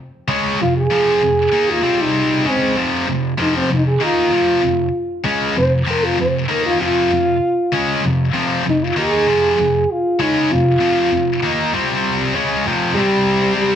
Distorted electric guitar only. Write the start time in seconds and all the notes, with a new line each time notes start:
0.28 C#3 G#3 C#4
0.59 F2 C3
0.90 F2 C3 F3
1.21 F2 C3
1.52 D#3 A#3 D#4
1.82 C3 G3 C4
2.45 C#3 G#3 C#4
2.76 F2 C3 F3
3.07 F2 C3
3.38 F2 C3 F3
3.70 F2 C3
4.00 D#3 A#3 D#4
4.31 F2 C3 F3
4.62 F2 C3
5.24 C#3 G#3 C#4
5.56 F2 C3
5.87 F2 C3 F3
6.18 F2 C3
6.48 D#3 A#3 D#4
6.79 F2 C3 F3
7.11 F2 C3
7.72 C#3 G#3 C#4
8.03 F2 C3
8.34 F2 C3 F3
8.65 F2 C3
8.96 D#3 A#3 D#4
9.27 F2 C3 F3
9.58 F2 C3
10.19 C#3 G#3 C#4
10.50 F2 C3
10.80 F2 C3 F3
11.12 F2 C3
11.43 D#3 A#3 D#4
11.72 C3 G3 C4
12.34 C#3 G#3 C#4
12.66 F2 C3 F3
12.96 C3 G3
13.00 C4